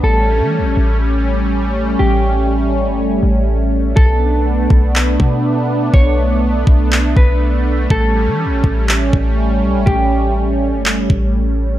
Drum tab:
CP |--------|--------|----x---|----x---|
BD |--------|--------|o--o-o--|o--o-o--|

CP |----x---|----x---|
BD |o--o-o--|o----o--|